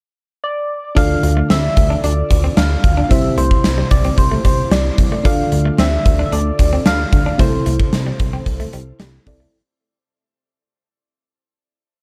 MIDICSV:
0, 0, Header, 1, 7, 480
1, 0, Start_track
1, 0, Key_signature, -1, "minor"
1, 0, Tempo, 535714
1, 865, Time_signature, 4, 2, 24, 8
1, 10770, End_track
2, 0, Start_track
2, 0, Title_t, "Soft synth lead"
2, 0, Program_c, 0, 80
2, 391, Note_on_c, 0, 74, 99
2, 870, Note_on_c, 0, 77, 105
2, 883, Note_off_c, 0, 74, 0
2, 1344, Note_off_c, 0, 77, 0
2, 1350, Note_on_c, 0, 76, 111
2, 1794, Note_off_c, 0, 76, 0
2, 1829, Note_on_c, 0, 74, 92
2, 2273, Note_off_c, 0, 74, 0
2, 2302, Note_on_c, 0, 77, 95
2, 2723, Note_off_c, 0, 77, 0
2, 2723, Note_on_c, 0, 77, 76
2, 2787, Note_on_c, 0, 76, 100
2, 2801, Note_off_c, 0, 77, 0
2, 3026, Note_on_c, 0, 72, 102
2, 3040, Note_off_c, 0, 76, 0
2, 3503, Note_on_c, 0, 74, 88
2, 3517, Note_off_c, 0, 72, 0
2, 3741, Note_off_c, 0, 74, 0
2, 3747, Note_on_c, 0, 72, 88
2, 3969, Note_off_c, 0, 72, 0
2, 3988, Note_on_c, 0, 72, 92
2, 4229, Note_on_c, 0, 74, 89
2, 4242, Note_off_c, 0, 72, 0
2, 4710, Note_on_c, 0, 77, 105
2, 4723, Note_off_c, 0, 74, 0
2, 5183, Note_off_c, 0, 77, 0
2, 5188, Note_on_c, 0, 76, 108
2, 5607, Note_off_c, 0, 76, 0
2, 5607, Note_on_c, 0, 76, 69
2, 5672, Note_on_c, 0, 74, 90
2, 5686, Note_off_c, 0, 76, 0
2, 6148, Note_off_c, 0, 74, 0
2, 6153, Note_on_c, 0, 77, 99
2, 6631, Note_on_c, 0, 72, 90
2, 6644, Note_off_c, 0, 77, 0
2, 8068, Note_off_c, 0, 72, 0
2, 10770, End_track
3, 0, Start_track
3, 0, Title_t, "FM electric piano"
3, 0, Program_c, 1, 5
3, 852, Note_on_c, 1, 62, 63
3, 859, Note_on_c, 1, 65, 56
3, 862, Note_on_c, 1, 50, 62
3, 866, Note_on_c, 1, 69, 56
3, 873, Note_on_c, 1, 74, 68
3, 1029, Control_c, 1, 64, 127
3, 1547, Note_off_c, 1, 50, 0
3, 2743, Note_off_c, 1, 62, 0
3, 2746, Note_off_c, 1, 65, 0
3, 2749, Note_off_c, 1, 69, 0
3, 2753, Note_off_c, 1, 74, 0
3, 2771, Note_on_c, 1, 60, 62
3, 2779, Note_on_c, 1, 64, 55
3, 2782, Note_on_c, 1, 48, 64
3, 2785, Note_on_c, 1, 67, 56
3, 2793, Note_on_c, 1, 72, 69
3, 2797, Control_c, 1, 64, 0
3, 2963, Control_c, 1, 64, 127
3, 3468, Note_off_c, 1, 48, 0
3, 4662, Note_off_c, 1, 60, 0
3, 4666, Note_off_c, 1, 64, 0
3, 4669, Note_off_c, 1, 67, 0
3, 4673, Note_off_c, 1, 72, 0
3, 4691, Note_on_c, 1, 62, 62
3, 4698, Note_on_c, 1, 65, 57
3, 4701, Note_on_c, 1, 50, 61
3, 4705, Note_on_c, 1, 69, 59
3, 4714, Note_on_c, 1, 74, 71
3, 4718, Control_c, 1, 64, 0
3, 4883, Control_c, 1, 64, 127
3, 5387, Note_off_c, 1, 50, 0
3, 6582, Note_off_c, 1, 62, 0
3, 6586, Note_off_c, 1, 65, 0
3, 6589, Note_off_c, 1, 69, 0
3, 6593, Note_off_c, 1, 74, 0
3, 6613, Note_on_c, 1, 60, 60
3, 6620, Note_on_c, 1, 64, 57
3, 6623, Note_on_c, 1, 48, 62
3, 6626, Note_on_c, 1, 69, 60
3, 6634, Note_on_c, 1, 72, 67
3, 6636, Control_c, 1, 64, 0
3, 6816, Control_c, 1, 64, 127
3, 7308, Note_off_c, 1, 48, 0
3, 8265, Note_off_c, 1, 60, 0
3, 8268, Note_off_c, 1, 64, 0
3, 8272, Note_off_c, 1, 69, 0
3, 8276, Note_off_c, 1, 72, 0
3, 8299, Note_on_c, 1, 60, 55
3, 8303, Note_on_c, 1, 64, 48
3, 8306, Note_on_c, 1, 69, 50
3, 8310, Note_on_c, 1, 74, 60
3, 8542, Note_off_c, 1, 60, 0
3, 8544, Note_off_c, 1, 64, 0
3, 8546, Note_off_c, 1, 69, 0
3, 8548, Note_off_c, 1, 74, 0
3, 8554, Control_c, 1, 64, 0
3, 10770, End_track
4, 0, Start_track
4, 0, Title_t, "Clean electric guitar"
4, 0, Program_c, 2, 27
4, 865, Note_on_c, 2, 62, 86
4, 941, Note_off_c, 2, 62, 0
4, 1226, Note_on_c, 2, 57, 67
4, 1302, Note_off_c, 2, 57, 0
4, 1345, Note_on_c, 2, 60, 70
4, 1422, Note_off_c, 2, 60, 0
4, 1705, Note_on_c, 2, 62, 75
4, 1781, Note_off_c, 2, 62, 0
4, 1827, Note_on_c, 2, 62, 67
4, 1903, Note_off_c, 2, 62, 0
4, 2186, Note_on_c, 2, 60, 66
4, 2262, Note_off_c, 2, 60, 0
4, 2306, Note_on_c, 2, 62, 80
4, 2382, Note_off_c, 2, 62, 0
4, 2664, Note_on_c, 2, 62, 70
4, 2741, Note_off_c, 2, 62, 0
4, 2785, Note_on_c, 2, 60, 85
4, 2861, Note_off_c, 2, 60, 0
4, 3027, Note_on_c, 2, 57, 73
4, 3103, Note_off_c, 2, 57, 0
4, 3386, Note_on_c, 2, 55, 63
4, 3462, Note_off_c, 2, 55, 0
4, 3627, Note_on_c, 2, 60, 69
4, 3703, Note_off_c, 2, 60, 0
4, 3866, Note_on_c, 2, 57, 66
4, 3942, Note_off_c, 2, 57, 0
4, 3985, Note_on_c, 2, 55, 68
4, 4061, Note_off_c, 2, 55, 0
4, 4225, Note_on_c, 2, 55, 81
4, 4301, Note_off_c, 2, 55, 0
4, 4588, Note_on_c, 2, 57, 66
4, 4663, Note_off_c, 2, 57, 0
4, 4706, Note_on_c, 2, 62, 87
4, 4782, Note_off_c, 2, 62, 0
4, 5066, Note_on_c, 2, 57, 76
4, 5142, Note_off_c, 2, 57, 0
4, 5186, Note_on_c, 2, 60, 79
4, 5262, Note_off_c, 2, 60, 0
4, 5548, Note_on_c, 2, 62, 75
4, 5624, Note_off_c, 2, 62, 0
4, 5666, Note_on_c, 2, 62, 69
4, 5742, Note_off_c, 2, 62, 0
4, 6028, Note_on_c, 2, 60, 65
4, 6103, Note_off_c, 2, 60, 0
4, 6149, Note_on_c, 2, 62, 80
4, 6224, Note_off_c, 2, 62, 0
4, 6507, Note_on_c, 2, 62, 66
4, 6583, Note_off_c, 2, 62, 0
4, 6626, Note_on_c, 2, 57, 87
4, 6702, Note_off_c, 2, 57, 0
4, 6866, Note_on_c, 2, 57, 75
4, 6942, Note_off_c, 2, 57, 0
4, 7226, Note_on_c, 2, 55, 60
4, 7302, Note_off_c, 2, 55, 0
4, 7467, Note_on_c, 2, 60, 76
4, 7542, Note_off_c, 2, 60, 0
4, 7705, Note_on_c, 2, 57, 65
4, 7781, Note_off_c, 2, 57, 0
4, 7825, Note_on_c, 2, 55, 74
4, 7901, Note_off_c, 2, 55, 0
4, 8062, Note_on_c, 2, 55, 79
4, 8140, Note_off_c, 2, 55, 0
4, 8424, Note_on_c, 2, 57, 62
4, 8501, Note_off_c, 2, 57, 0
4, 10770, End_track
5, 0, Start_track
5, 0, Title_t, "Analog synth bass"
5, 0, Program_c, 3, 38
5, 866, Note_on_c, 3, 38, 88
5, 1038, Note_off_c, 3, 38, 0
5, 1104, Note_on_c, 3, 38, 90
5, 1277, Note_off_c, 3, 38, 0
5, 1345, Note_on_c, 3, 38, 93
5, 1517, Note_off_c, 3, 38, 0
5, 1586, Note_on_c, 3, 38, 90
5, 1758, Note_off_c, 3, 38, 0
5, 1825, Note_on_c, 3, 38, 101
5, 1998, Note_off_c, 3, 38, 0
5, 2067, Note_on_c, 3, 38, 90
5, 2239, Note_off_c, 3, 38, 0
5, 2307, Note_on_c, 3, 38, 97
5, 2479, Note_off_c, 3, 38, 0
5, 2545, Note_on_c, 3, 38, 89
5, 2717, Note_off_c, 3, 38, 0
5, 2784, Note_on_c, 3, 36, 95
5, 2957, Note_off_c, 3, 36, 0
5, 3024, Note_on_c, 3, 36, 96
5, 3197, Note_off_c, 3, 36, 0
5, 3264, Note_on_c, 3, 36, 93
5, 3437, Note_off_c, 3, 36, 0
5, 3506, Note_on_c, 3, 36, 102
5, 3678, Note_off_c, 3, 36, 0
5, 3743, Note_on_c, 3, 36, 110
5, 3916, Note_off_c, 3, 36, 0
5, 3985, Note_on_c, 3, 36, 87
5, 4158, Note_off_c, 3, 36, 0
5, 4223, Note_on_c, 3, 36, 97
5, 4397, Note_off_c, 3, 36, 0
5, 4465, Note_on_c, 3, 36, 85
5, 4638, Note_off_c, 3, 36, 0
5, 4705, Note_on_c, 3, 38, 95
5, 4877, Note_off_c, 3, 38, 0
5, 4947, Note_on_c, 3, 38, 98
5, 5119, Note_off_c, 3, 38, 0
5, 5186, Note_on_c, 3, 38, 105
5, 5358, Note_off_c, 3, 38, 0
5, 5428, Note_on_c, 3, 38, 96
5, 5599, Note_off_c, 3, 38, 0
5, 5668, Note_on_c, 3, 38, 100
5, 5839, Note_off_c, 3, 38, 0
5, 5907, Note_on_c, 3, 38, 97
5, 6079, Note_off_c, 3, 38, 0
5, 6146, Note_on_c, 3, 38, 99
5, 6318, Note_off_c, 3, 38, 0
5, 6386, Note_on_c, 3, 38, 91
5, 6558, Note_off_c, 3, 38, 0
5, 6624, Note_on_c, 3, 36, 102
5, 6797, Note_off_c, 3, 36, 0
5, 6867, Note_on_c, 3, 36, 102
5, 7039, Note_off_c, 3, 36, 0
5, 7105, Note_on_c, 3, 36, 107
5, 7277, Note_off_c, 3, 36, 0
5, 7346, Note_on_c, 3, 36, 94
5, 7518, Note_off_c, 3, 36, 0
5, 7582, Note_on_c, 3, 36, 100
5, 7756, Note_off_c, 3, 36, 0
5, 7826, Note_on_c, 3, 36, 90
5, 7998, Note_off_c, 3, 36, 0
5, 8065, Note_on_c, 3, 36, 103
5, 8238, Note_off_c, 3, 36, 0
5, 8304, Note_on_c, 3, 36, 95
5, 8477, Note_off_c, 3, 36, 0
5, 10770, End_track
6, 0, Start_track
6, 0, Title_t, "Muted clean electric guitar strokes"
6, 1106, Note_on_c, 9, 29, 41
6, 1196, Note_off_c, 9, 29, 0
6, 1586, Note_on_c, 9, 29, 40
6, 1675, Note_off_c, 9, 29, 0
6, 2067, Note_on_c, 9, 29, 44
6, 2156, Note_off_c, 9, 29, 0
6, 2424, Note_on_c, 9, 29, 38
6, 2514, Note_off_c, 9, 29, 0
6, 2906, Note_on_c, 9, 29, 42
6, 2995, Note_off_c, 9, 29, 0
6, 3509, Note_on_c, 9, 29, 40
6, 3599, Note_off_c, 9, 29, 0
6, 3748, Note_on_c, 9, 29, 41
6, 3837, Note_off_c, 9, 29, 0
6, 4467, Note_on_c, 9, 29, 43
6, 4557, Note_off_c, 9, 29, 0
6, 4947, Note_on_c, 9, 29, 42
6, 5037, Note_off_c, 9, 29, 0
6, 5429, Note_on_c, 9, 29, 40
6, 5519, Note_off_c, 9, 29, 0
6, 5910, Note_on_c, 9, 29, 44
6, 6000, Note_off_c, 9, 29, 0
6, 6269, Note_on_c, 9, 29, 39
6, 6358, Note_off_c, 9, 29, 0
6, 6745, Note_on_c, 9, 29, 41
6, 6835, Note_off_c, 9, 29, 0
6, 7348, Note_on_c, 9, 29, 39
6, 7437, Note_off_c, 9, 29, 0
6, 7585, Note_on_c, 9, 29, 42
6, 7674, Note_off_c, 9, 29, 0
6, 8305, Note_on_c, 9, 29, 40
6, 8395, Note_off_c, 9, 29, 0
6, 10770, End_track
7, 0, Start_track
7, 0, Title_t, "Drums"
7, 866, Note_on_c, 9, 36, 95
7, 867, Note_on_c, 9, 42, 83
7, 955, Note_off_c, 9, 36, 0
7, 957, Note_off_c, 9, 42, 0
7, 1105, Note_on_c, 9, 42, 67
7, 1195, Note_off_c, 9, 42, 0
7, 1345, Note_on_c, 9, 38, 99
7, 1345, Note_on_c, 9, 42, 86
7, 1434, Note_off_c, 9, 38, 0
7, 1435, Note_off_c, 9, 42, 0
7, 1584, Note_on_c, 9, 42, 64
7, 1586, Note_on_c, 9, 36, 85
7, 1673, Note_off_c, 9, 42, 0
7, 1676, Note_off_c, 9, 36, 0
7, 1825, Note_on_c, 9, 42, 69
7, 1915, Note_off_c, 9, 42, 0
7, 2065, Note_on_c, 9, 42, 68
7, 2066, Note_on_c, 9, 36, 74
7, 2154, Note_off_c, 9, 42, 0
7, 2156, Note_off_c, 9, 36, 0
7, 2303, Note_on_c, 9, 38, 107
7, 2303, Note_on_c, 9, 42, 93
7, 2392, Note_off_c, 9, 42, 0
7, 2393, Note_off_c, 9, 38, 0
7, 2542, Note_on_c, 9, 42, 62
7, 2544, Note_on_c, 9, 36, 84
7, 2632, Note_off_c, 9, 42, 0
7, 2634, Note_off_c, 9, 36, 0
7, 2785, Note_on_c, 9, 36, 94
7, 2785, Note_on_c, 9, 42, 83
7, 2874, Note_off_c, 9, 36, 0
7, 2875, Note_off_c, 9, 42, 0
7, 3025, Note_on_c, 9, 42, 67
7, 3115, Note_off_c, 9, 42, 0
7, 3145, Note_on_c, 9, 36, 92
7, 3234, Note_off_c, 9, 36, 0
7, 3263, Note_on_c, 9, 38, 98
7, 3264, Note_on_c, 9, 42, 87
7, 3353, Note_off_c, 9, 38, 0
7, 3354, Note_off_c, 9, 42, 0
7, 3502, Note_on_c, 9, 42, 67
7, 3505, Note_on_c, 9, 36, 86
7, 3591, Note_off_c, 9, 42, 0
7, 3595, Note_off_c, 9, 36, 0
7, 3623, Note_on_c, 9, 42, 47
7, 3712, Note_off_c, 9, 42, 0
7, 3743, Note_on_c, 9, 36, 90
7, 3744, Note_on_c, 9, 42, 73
7, 3833, Note_off_c, 9, 36, 0
7, 3834, Note_off_c, 9, 42, 0
7, 3984, Note_on_c, 9, 42, 66
7, 3985, Note_on_c, 9, 36, 73
7, 4074, Note_off_c, 9, 42, 0
7, 4075, Note_off_c, 9, 36, 0
7, 4224, Note_on_c, 9, 42, 94
7, 4225, Note_on_c, 9, 38, 108
7, 4313, Note_off_c, 9, 42, 0
7, 4314, Note_off_c, 9, 38, 0
7, 4463, Note_on_c, 9, 42, 64
7, 4465, Note_on_c, 9, 36, 85
7, 4553, Note_off_c, 9, 42, 0
7, 4554, Note_off_c, 9, 36, 0
7, 4705, Note_on_c, 9, 36, 99
7, 4705, Note_on_c, 9, 42, 82
7, 4794, Note_off_c, 9, 36, 0
7, 4794, Note_off_c, 9, 42, 0
7, 4945, Note_on_c, 9, 42, 66
7, 5035, Note_off_c, 9, 42, 0
7, 5183, Note_on_c, 9, 38, 100
7, 5184, Note_on_c, 9, 42, 85
7, 5272, Note_off_c, 9, 38, 0
7, 5273, Note_off_c, 9, 42, 0
7, 5426, Note_on_c, 9, 42, 66
7, 5427, Note_on_c, 9, 36, 91
7, 5516, Note_off_c, 9, 42, 0
7, 5517, Note_off_c, 9, 36, 0
7, 5667, Note_on_c, 9, 42, 71
7, 5756, Note_off_c, 9, 42, 0
7, 5905, Note_on_c, 9, 42, 67
7, 5907, Note_on_c, 9, 36, 76
7, 5994, Note_off_c, 9, 42, 0
7, 5996, Note_off_c, 9, 36, 0
7, 6143, Note_on_c, 9, 42, 92
7, 6144, Note_on_c, 9, 38, 109
7, 6233, Note_off_c, 9, 42, 0
7, 6234, Note_off_c, 9, 38, 0
7, 6384, Note_on_c, 9, 42, 62
7, 6385, Note_on_c, 9, 36, 87
7, 6474, Note_off_c, 9, 42, 0
7, 6475, Note_off_c, 9, 36, 0
7, 6624, Note_on_c, 9, 42, 86
7, 6625, Note_on_c, 9, 36, 97
7, 6713, Note_off_c, 9, 42, 0
7, 6714, Note_off_c, 9, 36, 0
7, 6863, Note_on_c, 9, 42, 64
7, 6953, Note_off_c, 9, 42, 0
7, 6985, Note_on_c, 9, 36, 96
7, 7074, Note_off_c, 9, 36, 0
7, 7103, Note_on_c, 9, 38, 98
7, 7104, Note_on_c, 9, 42, 86
7, 7193, Note_off_c, 9, 38, 0
7, 7194, Note_off_c, 9, 42, 0
7, 7343, Note_on_c, 9, 42, 66
7, 7346, Note_on_c, 9, 36, 91
7, 7432, Note_off_c, 9, 42, 0
7, 7435, Note_off_c, 9, 36, 0
7, 7582, Note_on_c, 9, 36, 83
7, 7582, Note_on_c, 9, 42, 70
7, 7672, Note_off_c, 9, 36, 0
7, 7672, Note_off_c, 9, 42, 0
7, 7704, Note_on_c, 9, 42, 46
7, 7794, Note_off_c, 9, 42, 0
7, 7821, Note_on_c, 9, 42, 64
7, 7911, Note_off_c, 9, 42, 0
7, 8060, Note_on_c, 9, 42, 93
7, 8061, Note_on_c, 9, 38, 110
7, 8150, Note_off_c, 9, 38, 0
7, 8150, Note_off_c, 9, 42, 0
7, 8302, Note_on_c, 9, 46, 63
7, 8304, Note_on_c, 9, 36, 86
7, 8391, Note_off_c, 9, 46, 0
7, 8393, Note_off_c, 9, 36, 0
7, 10770, End_track
0, 0, End_of_file